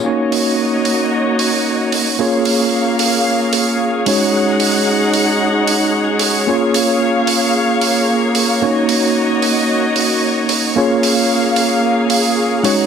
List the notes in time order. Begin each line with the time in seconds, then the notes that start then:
0.04 A#3 C#4 D#4 F#4 C#5 D#5
0.32 open hi-hat
0.85 open hi-hat
1.39 open hi-hat
1.92 open hi-hat
2.19 A#3 C#4 F4 G#4 C#5 F5
2.45 open hi-hat
2.99 open hi-hat
3.53 open hi-hat
4.06 G#3 C#4 D#4 F#4 C#5 F#5, open hi-hat
4.60 open hi-hat
5.14 open hi-hat
5.68 open hi-hat
6.19 open hi-hat
6.47 A#3 C#4 F4 G#4 C#5 F5
6.74 open hi-hat
7.27 open hi-hat
7.81 open hi-hat
8.35 open hi-hat
8.62 A#3 C#4 D#4 F#4 C#5 D#5
8.89 open hi-hat
9.42 open hi-hat
9.96 open hi-hat
10.49 open hi-hat
10.76 A#3 C#4 F4 G#4 C#5 F5
11.03 open hi-hat
11.56 open hi-hat
12.10 open hi-hat
12.63 G#3 C#4 D#4 F#4 C#5 F#5, open hi-hat